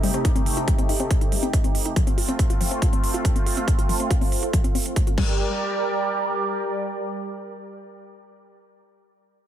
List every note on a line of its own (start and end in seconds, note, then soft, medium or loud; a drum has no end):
0.00 1.92 C3 medium
0.00 0.09 G3 medium
0.00 1.93 A3 medium
0.00 1.92 D#4 medium
0.00 1.92 G4 medium
0.00 open hi-hat loud
0.14 0.20 C4 medium
0.14 closed hi-hat soft
0.25 0.31 D#4 medium
0.25 kick loud
0.25 closed hi-hat medium
0.35 0.42 C4 medium
0.35 closed hi-hat soft
0.46 open hi-hat medium
0.57 0.61 D#4 medium
0.57 closed hi-hat soft
0.68 0.74 G3 medium
0.68 kick loud
0.68 closed hi-hat medium
0.78 0.84 C4 medium
0.78 closed hi-hat soft
0.89 0.95 D#4 medium
0.89 open hi-hat loud
1.00 1.06 C4 medium
1.00 closed hi-hat soft
1.11 kick loud
1.11 closed hi-hat medium
1.21 1.25 D#4 medium
1.21 closed hi-hat soft
1.32 1.38 G3 medium
1.32 open hi-hat medium
1.43 1.49 C4 medium
1.43 closed hi-hat soft
1.53 1.60 D#4 medium
1.53 kick loud
1.53 closed hi-hat medium
1.64 1.70 C4 medium
1.64 closed hi-hat soft
1.75 open hi-hat medium
1.86 1.89 D#4 medium
1.86 closed hi-hat soft
1.96 2.02 F3 medium
1.96 5.15 A3 medium
1.96 5.15 C4 medium
1.96 5.15 F4 medium
1.96 kick loud
1.96 closed hi-hat medium
2.07 2.13 C4 medium
2.07 closed hi-hat soft
2.18 2.24 F4 medium
2.18 open hi-hat medium
2.28 2.34 C4 medium
2.28 closed hi-hat soft
2.39 kick loud
2.39 closed hi-hat medium
2.50 2.54 F4 medium
2.50 closed hi-hat soft
2.61 2.67 F3 medium
2.61 open hi-hat loud
2.71 2.77 C4 medium
2.71 closed hi-hat soft
2.82 2.88 F4 medium
2.82 kick loud
2.82 closed hi-hat medium
2.93 2.99 C4 medium
2.93 closed hi-hat soft
3.04 open hi-hat medium
3.14 3.18 F4 medium
3.14 closed hi-hat soft
3.25 3.31 F3 medium
3.25 kick loud
3.25 closed hi-hat medium
3.36 3.42 C4 medium
3.36 closed hi-hat soft
3.46 3.52 F4 medium
3.46 open hi-hat medium
3.57 3.63 C4 medium
3.57 closed hi-hat soft
3.68 kick loud
3.68 closed hi-hat medium
3.78 3.82 F4 medium
3.78 closed hi-hat soft
3.89 3.95 F3 medium
3.89 open hi-hat medium
4.00 4.06 C4 medium
4.00 closed hi-hat soft
4.10 4.17 F4 medium
4.10 kick loud
4.10 closed hi-hat medium
4.21 4.27 C4 medium
4.21 open hi-hat medium
4.32 open hi-hat loud
4.43 4.46 F4 medium
4.43 closed hi-hat soft
4.53 4.59 F3 medium
4.53 kick loud
4.53 closed hi-hat medium
4.64 4.70 C4 medium
4.64 closed hi-hat soft
4.75 4.84 C4 medium
4.75 open hi-hat medium
4.86 closed hi-hat soft
4.96 5.02 A3 medium
4.96 kick loud
4.96 closed hi-hat medium
5.07 5.13 F4 medium
5.07 closed hi-hat soft
5.18 5.58 G3 medium
5.18 8.31 G3 medium
5.18 8.31 G4 medium
5.18 8.31 A#4 medium
5.18 8.31 D5 medium
5.18 kick loud
5.18 crash medium